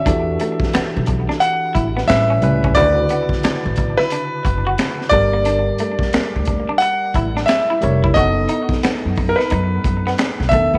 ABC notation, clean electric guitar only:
X:1
M:4/4
L:1/16
Q:"Swing 16ths" 1/4=89
K:Edor
V:1 name="Clean electric guitar"
D z A, z B, z2 D z2 E B, z C z C | E z B, z D z2 E D z2 F z2 D _B, | D z A, z _B, z2 D z2 E D z E z E | F z ^D z B, z2 D D z2 B, z2 A, B, |]